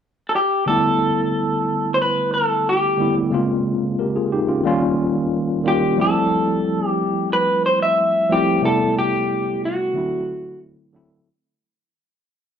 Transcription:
0.29 0.35 A4 soft
0.36 0.67 G4 medium
0.66 1.81 D3 medium
0.66 1.81 G3 medium
0.66 1.81 A3 medium
0.66 1.82 B3 medium
0.66 1.82 E4 medium
0.66 1.89 A4 medium
1.94 2.01 C5 medium
2.02 2.32 B4 medium
2.34 2.68 A4 medium
2.69 3.14 G4 medium
2.98 3.27 D3 medium
2.98 3.28 G3 medium
2.98 3.28 A3 soft
2.98 3.29 B3 medium
2.98 3.29 E4 medium
3.31 4.46 C#3 medium
3.31 4.46 G#3 medium
3.31 4.47 A#3 medium
3.31 4.00 C4 medium
3.31 4.00 F4 medium
3.99 4.16 G4 soft
3.99 4.15 A#4 medium
4.16 4.32 F4 soft
4.16 4.32 G#4 medium
4.32 4.49 D#4 medium
4.32 4.48 G4 medium
4.48 4.65 C#4 medium
4.48 4.66 F4 medium
4.64 5.50 D#3 medium
4.64 5.51 G3 medium
4.64 5.51 A#3 medium
4.64 5.51 C#4 medium
4.64 5.52 F4 medium
5.64 5.93 D#3 medium
5.64 5.93 G3 medium
5.64 5.94 A#3 medium
5.64 5.94 C#4 medium
5.64 5.95 F4 medium
5.68 5.98 G4 medium
5.96 7.11 F3 medium
5.96 7.11 G3 medium
5.96 7.12 A3 medium
5.96 7.12 C4 medium
5.96 7.13 E4 medium
6.01 6.87 A4 medium
6.87 7.28 G4 medium
7.33 7.66 B4 medium
7.66 7.82 C5 medium
7.82 8.33 E5 loud
8.29 8.58 F3 medium
8.29 8.58 G3 medium
8.29 8.59 A3 medium
8.29 8.59 C4 medium
8.29 8.60 E4 medium
8.29 8.65 G4 medium
8.62 9.76 C3 medium
8.62 9.76 G3 medium
8.62 9.77 A3 medium
8.62 9.77 B3 medium
8.62 9.77 E4 medium
8.62 8.95 A4 medium
8.99 9.65 G4 medium
9.65 10.59 F#4 medium
9.93 10.79 D3 medium
9.93 10.80 F#3 medium
9.93 10.80 A3 medium
9.93 10.81 C4 medium
9.93 10.81 E4 medium
10.93 11.22 D3 medium
10.93 11.22 F#3 medium
10.93 11.22 A3 medium
10.93 11.23 C4 medium
10.93 11.23 E4 medium

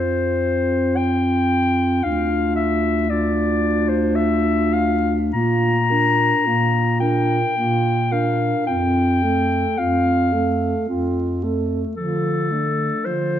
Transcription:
0.00 2.00 F2 soft
0.00 2.00 C4 soft
0.00 2.00 F4 soft
0.00 0.98 C5 medium
0.97 2.05 G5 medium
2.04 5.30 D2 soft
2.04 3.08 D4 soft
2.04 3.08 F4 soft
2.04 2.55 F5 soft
2.56 3.11 E5 medium
3.10 5.30 D4 soft
3.10 5.17 F4 soft
3.10 3.90 D5 medium
3.89 4.17 C5 medium
4.16 4.75 E5 medium
4.74 5.13 F5 medium
5.33 6.33 A#2 soft
5.33 5.93 A#3 soft
5.33 5.92 F4 soft
5.33 6.97 A#5 medium
5.91 6.49 D4 soft
5.91 6.47 A#4 soft
6.45 7.44 A#2 soft
6.45 7.04 A#3 soft
6.45 7.02 F4 soft
7.00 7.40 D4 soft
7.00 7.56 A#4 soft
7.00 8.14 G5 medium
7.56 8.54 A#2 soft
7.56 8.15 A#3 soft
7.56 8.13 F4 soft
8.12 8.68 D4 soft
8.12 8.66 A#4 soft
8.12 8.67 F5 medium
8.66 9.65 F2 medium
8.66 9.25 C4 soft
8.66 9.24 F4 soft
8.66 9.80 G5 medium
9.22 9.80 A3 soft
9.22 9.80 A4 soft
9.78 10.75 F2 soft
9.78 10.35 C4 soft
9.78 10.34 F4 soft
9.78 10.88 F5 medium
10.32 10.88 A3 soft
10.32 10.88 A4 soft
10.88 11.85 F2 soft
10.88 11.45 C4 soft
10.88 11.45 F4 soft
11.43 11.96 A3 soft
11.43 11.83 A4 soft
11.97 12.92 D3 soft
11.97 12.52 F3 soft
11.97 12.54 F4 soft
11.97 13.06 A4 medium
12.51 13.08 A3 soft
12.51 13.08 D4 soft
13.05 13.39 D3 soft
13.05 13.39 F3 soft
13.05 13.39 F4 soft
13.05 13.39 C5 medium

